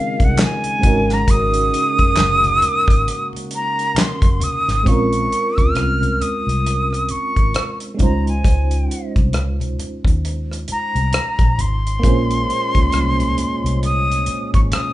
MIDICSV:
0, 0, Header, 1, 7, 480
1, 0, Start_track
1, 0, Tempo, 895522
1, 688, Time_signature, 4, 2, 24, 8
1, 8004, End_track
2, 0, Start_track
2, 0, Title_t, "Flute"
2, 0, Program_c, 0, 73
2, 0, Note_on_c, 0, 77, 88
2, 130, Note_on_c, 0, 78, 88
2, 138, Note_off_c, 0, 77, 0
2, 230, Note_on_c, 0, 80, 101
2, 238, Note_off_c, 0, 78, 0
2, 608, Note_on_c, 0, 82, 88
2, 616, Note_off_c, 0, 80, 0
2, 699, Note_on_c, 0, 87, 117
2, 707, Note_off_c, 0, 82, 0
2, 1759, Note_off_c, 0, 87, 0
2, 1905, Note_on_c, 0, 82, 93
2, 2139, Note_on_c, 0, 84, 88
2, 2147, Note_off_c, 0, 82, 0
2, 2377, Note_on_c, 0, 87, 104
2, 2385, Note_off_c, 0, 84, 0
2, 2615, Note_on_c, 0, 85, 91
2, 2623, Note_off_c, 0, 87, 0
2, 2989, Note_on_c, 0, 89, 88
2, 2998, Note_off_c, 0, 85, 0
2, 3331, Note_on_c, 0, 87, 91
2, 3339, Note_off_c, 0, 89, 0
2, 3811, Note_on_c, 0, 85, 95
2, 3819, Note_off_c, 0, 87, 0
2, 4161, Note_off_c, 0, 85, 0
2, 4306, Note_on_c, 0, 82, 76
2, 4428, Note_off_c, 0, 82, 0
2, 4441, Note_on_c, 0, 80, 72
2, 4893, Note_off_c, 0, 80, 0
2, 5746, Note_on_c, 0, 82, 86
2, 6222, Note_on_c, 0, 84, 103
2, 6230, Note_off_c, 0, 82, 0
2, 7415, Note_off_c, 0, 84, 0
2, 7424, Note_on_c, 0, 87, 103
2, 7775, Note_off_c, 0, 87, 0
2, 7796, Note_on_c, 0, 85, 85
2, 7828, Note_off_c, 0, 85, 0
2, 7897, Note_on_c, 0, 87, 81
2, 8004, Note_off_c, 0, 87, 0
2, 8004, End_track
3, 0, Start_track
3, 0, Title_t, "FM electric piano"
3, 0, Program_c, 1, 5
3, 0, Control_c, 1, 64, 127
3, 0, Note_on_c, 1, 56, 78
3, 0, Note_on_c, 1, 60, 77
3, 0, Note_on_c, 1, 61, 71
3, 0, Note_on_c, 1, 65, 73
3, 0, Note_on_c, 1, 70, 88
3, 417, Note_off_c, 1, 56, 0
3, 422, Note_off_c, 1, 60, 0
3, 426, Note_on_c, 1, 56, 60
3, 429, Note_off_c, 1, 61, 0
3, 433, Note_off_c, 1, 65, 0
3, 435, Note_on_c, 1, 60, 46
3, 438, Note_off_c, 1, 70, 0
3, 448, Note_on_c, 1, 63, 54
3, 455, Control_c, 1, 64, 0
3, 455, Note_on_c, 1, 66, 52
3, 467, Note_on_c, 1, 70, 62
3, 469, Note_on_c, 1, 61, 53
3, 482, Note_off_c, 1, 60, 0
3, 541, Control_c, 1, 64, 127
3, 2336, Note_off_c, 1, 56, 0
3, 2346, Note_off_c, 1, 63, 0
3, 2350, Note_off_c, 1, 66, 0
3, 2356, Note_off_c, 1, 70, 0
3, 2357, Note_off_c, 1, 61, 0
3, 2590, Note_on_c, 1, 56, 60
3, 2600, Note_on_c, 1, 60, 57
3, 2613, Note_on_c, 1, 61, 55
3, 2615, Control_c, 1, 64, 0
3, 2621, Note_on_c, 1, 65, 58
3, 2631, Note_on_c, 1, 70, 63
3, 2699, Control_c, 1, 64, 127
3, 4252, Note_off_c, 1, 56, 0
3, 4259, Note_on_c, 1, 56, 57
3, 4263, Note_off_c, 1, 60, 0
3, 4264, Note_off_c, 1, 61, 0
3, 4270, Note_on_c, 1, 61, 45
3, 4273, Note_off_c, 1, 65, 0
3, 4278, Note_off_c, 1, 70, 0
3, 4280, Note_on_c, 1, 63, 47
3, 4290, Note_on_c, 1, 65, 47
3, 4294, Control_c, 1, 64, 0
3, 4301, Note_on_c, 1, 72, 58
3, 4373, Control_c, 1, 64, 127
3, 6172, Note_off_c, 1, 56, 0
3, 6178, Note_off_c, 1, 61, 0
3, 6183, Note_off_c, 1, 63, 0
3, 6188, Note_off_c, 1, 65, 0
3, 6193, Note_off_c, 1, 72, 0
3, 6430, Note_on_c, 1, 58, 69
3, 6441, Note_on_c, 1, 60, 46
3, 6450, Note_on_c, 1, 65, 65
3, 6455, Control_c, 1, 64, 0
3, 6460, Note_on_c, 1, 68, 58
3, 6468, Note_on_c, 1, 72, 64
3, 6474, Note_on_c, 1, 61, 62
3, 6485, Note_off_c, 1, 60, 0
3, 6558, Control_c, 1, 64, 127
3, 8004, Note_off_c, 1, 58, 0
3, 8004, Note_off_c, 1, 61, 0
3, 8004, Note_off_c, 1, 65, 0
3, 8004, Note_off_c, 1, 68, 0
3, 8004, Note_off_c, 1, 72, 0
3, 8004, End_track
4, 0, Start_track
4, 0, Title_t, "Tonewheel organ"
4, 0, Program_c, 2, 16
4, 0, Note_on_c, 2, 49, 76
4, 0, Note_on_c, 2, 51, 61
4, 0, Note_on_c, 2, 56, 58
4, 427, Note_off_c, 2, 51, 0
4, 429, Note_off_c, 2, 56, 0
4, 430, Note_off_c, 2, 49, 0
4, 449, Note_on_c, 2, 49, 64
4, 450, Note_on_c, 2, 66, 76
4, 453, Note_on_c, 2, 56, 59
4, 1401, Note_off_c, 2, 56, 0
4, 1406, Note_on_c, 2, 58, 55
4, 2587, Note_off_c, 2, 49, 0
4, 2588, Note_off_c, 2, 66, 0
4, 2595, Note_off_c, 2, 58, 0
4, 6447, Note_on_c, 2, 46, 59
4, 6447, Note_on_c, 2, 61, 64
4, 6449, Note_on_c, 2, 56, 57
4, 8004, Note_off_c, 2, 46, 0
4, 8004, Note_off_c, 2, 56, 0
4, 8004, Note_off_c, 2, 61, 0
4, 8004, End_track
5, 0, Start_track
5, 0, Title_t, "Fingered electric bass"
5, 0, Program_c, 3, 33
5, 108, Note_on_c, 3, 36, 83
5, 199, Note_off_c, 3, 36, 0
5, 451, Note_on_c, 3, 32, 96
5, 668, Note_off_c, 3, 32, 0
5, 689, Note_on_c, 3, 32, 84
5, 907, Note_off_c, 3, 32, 0
5, 1070, Note_on_c, 3, 30, 85
5, 1161, Note_off_c, 3, 30, 0
5, 1166, Note_on_c, 3, 30, 90
5, 1386, Note_off_c, 3, 30, 0
5, 1545, Note_on_c, 3, 32, 86
5, 1637, Note_off_c, 3, 32, 0
5, 2263, Note_on_c, 3, 30, 86
5, 2357, Note_off_c, 3, 30, 0
5, 2510, Note_on_c, 3, 32, 77
5, 2600, Note_off_c, 3, 32, 0
5, 2608, Note_on_c, 3, 34, 84
5, 2827, Note_off_c, 3, 34, 0
5, 2993, Note_on_c, 3, 37, 68
5, 3078, Note_off_c, 3, 37, 0
5, 3082, Note_on_c, 3, 36, 73
5, 3304, Note_off_c, 3, 36, 0
5, 3466, Note_on_c, 3, 36, 76
5, 3786, Note_off_c, 3, 36, 0
5, 3949, Note_on_c, 3, 32, 67
5, 4040, Note_off_c, 3, 32, 0
5, 4292, Note_on_c, 3, 37, 88
5, 4509, Note_off_c, 3, 37, 0
5, 4529, Note_on_c, 3, 37, 95
5, 4747, Note_off_c, 3, 37, 0
5, 4912, Note_on_c, 3, 36, 84
5, 5006, Note_off_c, 3, 36, 0
5, 5006, Note_on_c, 3, 37, 94
5, 5226, Note_off_c, 3, 37, 0
5, 5387, Note_on_c, 3, 39, 83
5, 5706, Note_off_c, 3, 39, 0
5, 5871, Note_on_c, 3, 36, 96
5, 5961, Note_off_c, 3, 36, 0
5, 6108, Note_on_c, 3, 34, 94
5, 6199, Note_off_c, 3, 34, 0
5, 6210, Note_on_c, 3, 32, 83
5, 6428, Note_off_c, 3, 32, 0
5, 6455, Note_on_c, 3, 34, 96
5, 6670, Note_off_c, 3, 34, 0
5, 6837, Note_on_c, 3, 37, 72
5, 6924, Note_off_c, 3, 37, 0
5, 6931, Note_on_c, 3, 36, 82
5, 7148, Note_off_c, 3, 36, 0
5, 7312, Note_on_c, 3, 36, 92
5, 7629, Note_off_c, 3, 36, 0
5, 7795, Note_on_c, 3, 32, 85
5, 7883, Note_off_c, 3, 32, 0
5, 8004, End_track
6, 0, Start_track
6, 0, Title_t, "Muted fingered electric bass strokes"
6, 2123, Note_on_c, 9, 29, 45
6, 2177, Note_off_c, 9, 29, 0
6, 3813, Note_on_c, 9, 29, 44
6, 3867, Note_off_c, 9, 29, 0
6, 5730, Note_on_c, 9, 29, 41
6, 5783, Note_off_c, 9, 29, 0
6, 7654, Note_on_c, 9, 29, 46
6, 7708, Note_off_c, 9, 29, 0
6, 8004, End_track
7, 0, Start_track
7, 0, Title_t, "Drums"
7, 107, Note_on_c, 9, 36, 76
7, 108, Note_on_c, 9, 42, 34
7, 160, Note_off_c, 9, 36, 0
7, 162, Note_off_c, 9, 42, 0
7, 194, Note_on_c, 9, 62, 23
7, 194, Note_on_c, 9, 63, 50
7, 201, Note_on_c, 9, 42, 82
7, 206, Note_on_c, 9, 39, 93
7, 209, Note_on_c, 9, 38, 116
7, 247, Note_off_c, 9, 62, 0
7, 247, Note_off_c, 9, 63, 0
7, 254, Note_off_c, 9, 42, 0
7, 260, Note_off_c, 9, 39, 0
7, 263, Note_off_c, 9, 38, 0
7, 342, Note_on_c, 9, 42, 46
7, 345, Note_on_c, 9, 62, 30
7, 396, Note_off_c, 9, 42, 0
7, 399, Note_off_c, 9, 62, 0
7, 443, Note_on_c, 9, 63, 66
7, 443, Note_on_c, 9, 64, 63
7, 447, Note_on_c, 9, 42, 61
7, 448, Note_on_c, 9, 36, 85
7, 496, Note_off_c, 9, 63, 0
7, 496, Note_off_c, 9, 64, 0
7, 500, Note_off_c, 9, 42, 0
7, 501, Note_off_c, 9, 36, 0
7, 588, Note_on_c, 9, 38, 36
7, 591, Note_on_c, 9, 42, 37
7, 641, Note_off_c, 9, 38, 0
7, 644, Note_off_c, 9, 42, 0
7, 685, Note_on_c, 9, 36, 87
7, 685, Note_on_c, 9, 42, 83
7, 685, Note_on_c, 9, 62, 26
7, 738, Note_off_c, 9, 36, 0
7, 738, Note_off_c, 9, 62, 0
7, 739, Note_off_c, 9, 42, 0
7, 824, Note_on_c, 9, 42, 51
7, 877, Note_off_c, 9, 42, 0
7, 932, Note_on_c, 9, 42, 61
7, 985, Note_off_c, 9, 42, 0
7, 1065, Note_on_c, 9, 42, 39
7, 1067, Note_on_c, 9, 36, 76
7, 1118, Note_off_c, 9, 42, 0
7, 1121, Note_off_c, 9, 36, 0
7, 1158, Note_on_c, 9, 42, 73
7, 1161, Note_on_c, 9, 39, 72
7, 1164, Note_on_c, 9, 38, 85
7, 1171, Note_on_c, 9, 63, 60
7, 1212, Note_off_c, 9, 42, 0
7, 1215, Note_off_c, 9, 39, 0
7, 1218, Note_off_c, 9, 38, 0
7, 1225, Note_off_c, 9, 63, 0
7, 1302, Note_on_c, 9, 62, 28
7, 1302, Note_on_c, 9, 63, 63
7, 1308, Note_on_c, 9, 42, 40
7, 1356, Note_off_c, 9, 62, 0
7, 1356, Note_off_c, 9, 63, 0
7, 1361, Note_off_c, 9, 42, 0
7, 1404, Note_on_c, 9, 64, 47
7, 1405, Note_on_c, 9, 42, 65
7, 1458, Note_off_c, 9, 64, 0
7, 1459, Note_off_c, 9, 42, 0
7, 1542, Note_on_c, 9, 36, 92
7, 1557, Note_on_c, 9, 42, 53
7, 1596, Note_off_c, 9, 36, 0
7, 1610, Note_off_c, 9, 42, 0
7, 1651, Note_on_c, 9, 42, 71
7, 1704, Note_off_c, 9, 42, 0
7, 1785, Note_on_c, 9, 62, 33
7, 1803, Note_on_c, 9, 42, 47
7, 1838, Note_off_c, 9, 62, 0
7, 1857, Note_off_c, 9, 42, 0
7, 1880, Note_on_c, 9, 42, 57
7, 1934, Note_off_c, 9, 42, 0
7, 2031, Note_on_c, 9, 42, 37
7, 2085, Note_off_c, 9, 42, 0
7, 2116, Note_on_c, 9, 62, 23
7, 2116, Note_on_c, 9, 63, 55
7, 2124, Note_on_c, 9, 42, 82
7, 2130, Note_on_c, 9, 39, 92
7, 2133, Note_on_c, 9, 38, 115
7, 2170, Note_off_c, 9, 62, 0
7, 2170, Note_off_c, 9, 63, 0
7, 2178, Note_off_c, 9, 42, 0
7, 2183, Note_off_c, 9, 39, 0
7, 2187, Note_off_c, 9, 38, 0
7, 2261, Note_on_c, 9, 36, 95
7, 2263, Note_on_c, 9, 42, 47
7, 2265, Note_on_c, 9, 62, 28
7, 2315, Note_off_c, 9, 36, 0
7, 2317, Note_off_c, 9, 42, 0
7, 2318, Note_off_c, 9, 62, 0
7, 2361, Note_on_c, 9, 63, 60
7, 2361, Note_on_c, 9, 64, 65
7, 2366, Note_on_c, 9, 42, 64
7, 2415, Note_off_c, 9, 63, 0
7, 2415, Note_off_c, 9, 64, 0
7, 2420, Note_off_c, 9, 42, 0
7, 2511, Note_on_c, 9, 38, 30
7, 2514, Note_on_c, 9, 42, 45
7, 2564, Note_off_c, 9, 38, 0
7, 2567, Note_off_c, 9, 42, 0
7, 2606, Note_on_c, 9, 36, 83
7, 2609, Note_on_c, 9, 42, 69
7, 2660, Note_off_c, 9, 36, 0
7, 2663, Note_off_c, 9, 42, 0
7, 2745, Note_on_c, 9, 62, 27
7, 2748, Note_on_c, 9, 42, 46
7, 2799, Note_off_c, 9, 62, 0
7, 2801, Note_off_c, 9, 42, 0
7, 2854, Note_on_c, 9, 42, 51
7, 2908, Note_off_c, 9, 42, 0
7, 2990, Note_on_c, 9, 36, 70
7, 2992, Note_on_c, 9, 42, 38
7, 3044, Note_off_c, 9, 36, 0
7, 3046, Note_off_c, 9, 42, 0
7, 3084, Note_on_c, 9, 42, 63
7, 3087, Note_on_c, 9, 62, 23
7, 3087, Note_on_c, 9, 63, 60
7, 3091, Note_on_c, 9, 37, 72
7, 3138, Note_off_c, 9, 42, 0
7, 3140, Note_off_c, 9, 62, 0
7, 3140, Note_off_c, 9, 63, 0
7, 3144, Note_off_c, 9, 37, 0
7, 3222, Note_on_c, 9, 63, 59
7, 3232, Note_on_c, 9, 42, 33
7, 3276, Note_off_c, 9, 63, 0
7, 3285, Note_off_c, 9, 42, 0
7, 3326, Note_on_c, 9, 64, 49
7, 3331, Note_on_c, 9, 42, 62
7, 3380, Note_off_c, 9, 64, 0
7, 3385, Note_off_c, 9, 42, 0
7, 3479, Note_on_c, 9, 42, 45
7, 3533, Note_off_c, 9, 42, 0
7, 3563, Note_on_c, 9, 62, 28
7, 3572, Note_on_c, 9, 42, 65
7, 3616, Note_off_c, 9, 62, 0
7, 3626, Note_off_c, 9, 42, 0
7, 3701, Note_on_c, 9, 62, 28
7, 3713, Note_on_c, 9, 37, 32
7, 3721, Note_on_c, 9, 42, 44
7, 3755, Note_off_c, 9, 62, 0
7, 3766, Note_off_c, 9, 37, 0
7, 3774, Note_off_c, 9, 42, 0
7, 3798, Note_on_c, 9, 42, 59
7, 3852, Note_off_c, 9, 42, 0
7, 3947, Note_on_c, 9, 36, 62
7, 3949, Note_on_c, 9, 42, 33
7, 4001, Note_off_c, 9, 36, 0
7, 4003, Note_off_c, 9, 42, 0
7, 4035, Note_on_c, 9, 63, 44
7, 4043, Note_on_c, 9, 42, 83
7, 4052, Note_on_c, 9, 37, 112
7, 4089, Note_off_c, 9, 63, 0
7, 4097, Note_off_c, 9, 42, 0
7, 4106, Note_off_c, 9, 37, 0
7, 4183, Note_on_c, 9, 42, 47
7, 4236, Note_off_c, 9, 42, 0
7, 4281, Note_on_c, 9, 63, 60
7, 4281, Note_on_c, 9, 64, 62
7, 4284, Note_on_c, 9, 42, 52
7, 4288, Note_on_c, 9, 36, 71
7, 4335, Note_off_c, 9, 63, 0
7, 4335, Note_off_c, 9, 64, 0
7, 4338, Note_off_c, 9, 42, 0
7, 4342, Note_off_c, 9, 36, 0
7, 4434, Note_on_c, 9, 42, 34
7, 4488, Note_off_c, 9, 42, 0
7, 4526, Note_on_c, 9, 36, 94
7, 4530, Note_on_c, 9, 42, 79
7, 4580, Note_off_c, 9, 36, 0
7, 4584, Note_off_c, 9, 42, 0
7, 4669, Note_on_c, 9, 42, 46
7, 4722, Note_off_c, 9, 42, 0
7, 4777, Note_on_c, 9, 42, 57
7, 4831, Note_off_c, 9, 42, 0
7, 4909, Note_on_c, 9, 36, 73
7, 4910, Note_on_c, 9, 42, 34
7, 4963, Note_off_c, 9, 36, 0
7, 4963, Note_off_c, 9, 42, 0
7, 5002, Note_on_c, 9, 42, 63
7, 5008, Note_on_c, 9, 37, 79
7, 5008, Note_on_c, 9, 63, 59
7, 5055, Note_off_c, 9, 42, 0
7, 5062, Note_off_c, 9, 37, 0
7, 5062, Note_off_c, 9, 63, 0
7, 5146, Note_on_c, 9, 63, 58
7, 5152, Note_on_c, 9, 42, 37
7, 5199, Note_off_c, 9, 63, 0
7, 5205, Note_off_c, 9, 42, 0
7, 5247, Note_on_c, 9, 64, 45
7, 5250, Note_on_c, 9, 42, 58
7, 5300, Note_off_c, 9, 64, 0
7, 5304, Note_off_c, 9, 42, 0
7, 5384, Note_on_c, 9, 36, 79
7, 5400, Note_on_c, 9, 42, 45
7, 5438, Note_off_c, 9, 36, 0
7, 5454, Note_off_c, 9, 42, 0
7, 5493, Note_on_c, 9, 42, 63
7, 5547, Note_off_c, 9, 42, 0
7, 5636, Note_on_c, 9, 37, 34
7, 5644, Note_on_c, 9, 42, 47
7, 5690, Note_off_c, 9, 37, 0
7, 5697, Note_off_c, 9, 42, 0
7, 5724, Note_on_c, 9, 42, 57
7, 5777, Note_off_c, 9, 42, 0
7, 5873, Note_on_c, 9, 42, 33
7, 5927, Note_off_c, 9, 42, 0
7, 5962, Note_on_c, 9, 63, 49
7, 5964, Note_on_c, 9, 42, 85
7, 5973, Note_on_c, 9, 37, 111
7, 6015, Note_off_c, 9, 63, 0
7, 6018, Note_off_c, 9, 42, 0
7, 6026, Note_off_c, 9, 37, 0
7, 6104, Note_on_c, 9, 36, 84
7, 6104, Note_on_c, 9, 42, 41
7, 6158, Note_off_c, 9, 36, 0
7, 6158, Note_off_c, 9, 42, 0
7, 6209, Note_on_c, 9, 63, 52
7, 6209, Note_on_c, 9, 64, 55
7, 6211, Note_on_c, 9, 42, 60
7, 6263, Note_off_c, 9, 63, 0
7, 6263, Note_off_c, 9, 64, 0
7, 6265, Note_off_c, 9, 42, 0
7, 6361, Note_on_c, 9, 42, 39
7, 6415, Note_off_c, 9, 42, 0
7, 6451, Note_on_c, 9, 36, 92
7, 6455, Note_on_c, 9, 42, 74
7, 6504, Note_off_c, 9, 36, 0
7, 6509, Note_off_c, 9, 42, 0
7, 6596, Note_on_c, 9, 42, 49
7, 6650, Note_off_c, 9, 42, 0
7, 6700, Note_on_c, 9, 42, 52
7, 6754, Note_off_c, 9, 42, 0
7, 6833, Note_on_c, 9, 36, 72
7, 6835, Note_on_c, 9, 42, 40
7, 6887, Note_off_c, 9, 36, 0
7, 6888, Note_off_c, 9, 42, 0
7, 6927, Note_on_c, 9, 42, 70
7, 6932, Note_on_c, 9, 62, 28
7, 6932, Note_on_c, 9, 63, 60
7, 6934, Note_on_c, 9, 37, 68
7, 6981, Note_off_c, 9, 42, 0
7, 6986, Note_off_c, 9, 62, 0
7, 6986, Note_off_c, 9, 63, 0
7, 6988, Note_off_c, 9, 37, 0
7, 7075, Note_on_c, 9, 42, 42
7, 7076, Note_on_c, 9, 62, 28
7, 7076, Note_on_c, 9, 63, 59
7, 7129, Note_off_c, 9, 42, 0
7, 7129, Note_off_c, 9, 62, 0
7, 7129, Note_off_c, 9, 63, 0
7, 7171, Note_on_c, 9, 42, 61
7, 7177, Note_on_c, 9, 64, 51
7, 7224, Note_off_c, 9, 42, 0
7, 7230, Note_off_c, 9, 64, 0
7, 7322, Note_on_c, 9, 42, 44
7, 7375, Note_off_c, 9, 42, 0
7, 7413, Note_on_c, 9, 42, 63
7, 7467, Note_off_c, 9, 42, 0
7, 7566, Note_on_c, 9, 42, 46
7, 7620, Note_off_c, 9, 42, 0
7, 7645, Note_on_c, 9, 42, 60
7, 7699, Note_off_c, 9, 42, 0
7, 7793, Note_on_c, 9, 36, 77
7, 7794, Note_on_c, 9, 42, 39
7, 7847, Note_off_c, 9, 36, 0
7, 7848, Note_off_c, 9, 42, 0
7, 7888, Note_on_c, 9, 42, 81
7, 7888, Note_on_c, 9, 62, 25
7, 7888, Note_on_c, 9, 63, 49
7, 7897, Note_on_c, 9, 37, 114
7, 7941, Note_off_c, 9, 62, 0
7, 7941, Note_off_c, 9, 63, 0
7, 7942, Note_off_c, 9, 42, 0
7, 7951, Note_off_c, 9, 37, 0
7, 8004, End_track
0, 0, End_of_file